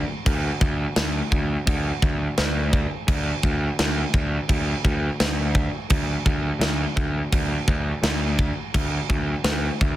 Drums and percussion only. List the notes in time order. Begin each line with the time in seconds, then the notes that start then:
0.26 kick, crash
0.61 kick
0.96 snare, crash
1.32 kick
1.67 kick, crash
2.02 kick
2.38 snare, crash
2.73 kick
3.08 kick, crash
3.43 kick
3.79 snare, crash
4.14 kick
4.49 kick, crash
4.85 kick
5.20 snare, crash
5.55 kick
5.90 kick, crash
6.26 kick
6.61 snare, crash
6.97 kick
7.33 kick, crash
7.68 kick
8.04 snare, crash
8.39 kick
8.74 kick, crash
9.10 kick
9.44 snare, crash
9.81 kick